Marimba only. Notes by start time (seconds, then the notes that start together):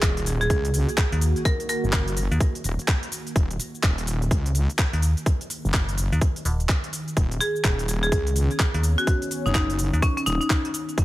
Already playing: G#4
0.41 G#4
1.45 A#4
1.69 A#4
7.41 G#4
8.03 G#4
8.98 F#4
9.46 D#4
9.55 D#4
10.02 C#4
10.17 C#4
10.26 D#4
10.41 D#4